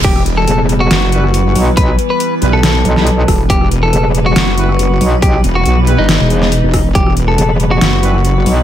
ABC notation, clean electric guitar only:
X:1
M:4/4
L:1/16
Q:1/4=139
K:Em
V:1 name="Clean electric guitar"
G2 z A2 z2 F8 z | B2 z B2 z2 A8 z | G2 z A2 z2 F8 z | G2 z F2 z2 ^D8 z |
G2 z A2 z2 F8 z |]